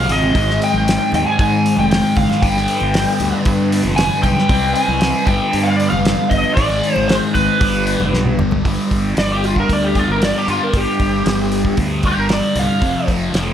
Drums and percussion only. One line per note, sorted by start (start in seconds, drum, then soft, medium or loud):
0.09 open hi-hat medium
0.09 low conga medium
0.22 low conga medium
0.35 kick loud
0.35 open hi-hat medium
0.50 snare soft
0.62 open hi-hat medium
0.73 high conga medium
0.88 snare loud
0.88 open hi-hat medium
1.12 open hi-hat soft
1.12 high conga medium
1.12 low conga medium
1.39 kick loud
1.39 open hi-hat medium
1.66 open hi-hat medium
1.77 high conga medium
1.91 snare loud
1.91 open hi-hat medium
2.16 kick medium
2.16 open hi-hat medium
2.16 low conga medium
2.30 snare soft
2.30 high conga medium
2.43 kick loud
2.43 open hi-hat medium
2.57 snare soft
2.68 open hi-hat medium
2.81 high conga medium
2.94 snare loud
2.94 open hi-hat medium
3.20 open hi-hat medium
3.20 high conga medium
3.20 low conga medium
3.45 kick loud
3.45 open hi-hat medium
3.72 open hi-hat medium
3.84 high conga medium
3.98 snare loud
3.98 open hi-hat medium
4.23 kick medium
4.23 open hi-hat medium
4.23 low conga medium
4.37 snare soft
4.37 high conga medium
4.49 kick loud
4.49 open hi-hat medium
4.76 open hi-hat medium
4.88 high conga medium
5.01 snare loud
5.01 open hi-hat medium
5.27 kick loud
5.27 open hi-hat medium
5.27 high conga medium
5.27 low conga medium
5.53 open hi-hat medium
5.80 open hi-hat medium
5.92 high conga medium
6.05 snare loud
6.05 open hi-hat medium
6.31 kick medium
6.31 open hi-hat medium
6.31 low conga medium
6.44 high conga medium
6.57 kick loud
6.57 open hi-hat medium
6.69 high conga medium
6.84 open hi-hat medium
6.96 high conga medium
6.96 low conga medium
7.09 snare loud
7.09 open hi-hat medium
7.35 kick medium
7.35 open hi-hat medium
7.35 low conga medium
7.61 kick loud
7.61 open hi-hat medium
7.87 open hi-hat medium
8.00 high conga medium
8.14 snare medium
8.26 high tom medium
8.39 mid tom medium
8.39 low conga medium
8.51 floor tom medium
8.51 high conga medium
8.65 kick loud
8.65 open hi-hat medium
8.91 kick medium
8.91 open hi-hat medium
9.17 snare loud
9.17 open hi-hat medium
9.44 open hi-hat soft
9.56 kick medium
9.69 kick medium
9.69 open hi-hat medium
9.95 kick medium
9.95 open hi-hat medium
10.22 snare loud
10.22 open hi-hat medium
10.48 open hi-hat soft
10.74 kick loud
10.74 open hi-hat medium
11.00 kick medium
11.00 open hi-hat medium
11.26 snare loud
11.26 open hi-hat medium
11.52 open hi-hat medium
11.65 kick medium
11.77 kick loud
11.77 open hi-hat medium
12.03 kick medium
12.03 open hi-hat medium
12.29 snare loud
12.29 open hi-hat medium
12.56 open hi-hat medium
12.82 kick loud
12.82 open hi-hat medium
13.08 kick medium
13.08 open hi-hat medium
13.34 snare loud
13.34 open hi-hat medium